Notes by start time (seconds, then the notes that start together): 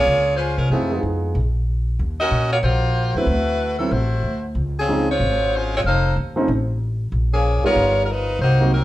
Already playing: A#3 F4 G#4 C#5
0.06 C#2
0.36 G#3 C#4 F4 B4 C5
0.57 C3 G#3 C#4 F4 A#4
0.70 F2 F3 A3 B3 C4 D#4 E4 F#4 G#4 A4
0.91 G#3 B3 D#4 F4 G#4
1.03 F2
1.35 A#1
1.99 D#2
2.20 C#4 F#4 A#4 D#5
2.31 A#2
2.52 A#3 F4 F#4 C#5
2.63 A#1 A#3 F4 F#4 C5
3.14 D#2 F#3 A3 B3 C4 E4 F#4 B4
3.26 D2
3.79 F#3 A3 B3 C4 E4 A4
3.91 A1 A3 E4 F#4 C5
4.23 D2
4.55 C#2
4.78 F3 C4 C#4 G#4
4.88 F3 G#3 C4 C#4 D#4
5.11 G#3 F4 C5 C#5
5.20 G#1
5.56 G#3 C#4 F4 C5
5.76 G#3 C4 F4 C#5
5.84 F1 D#4 A4 C5 F5
6.16 D#2
6.36 F3 A3 C4 C#4 D#4
6.48 A1
7.12 A#1
7.33 F3 A#3 C#4 G#4
7.64 G3 B3 D#4 F4 A#4 C#5, muted upright bass stroke
7.75 G1
8.05 A#4
8.11 F3 D#4 A#4 B4
8.39 C2 A#3 D#4 F#4 C5
8.60 F#3 A#3 C4 D#4 F#4
8.74 F#3 C4 D#4 A#4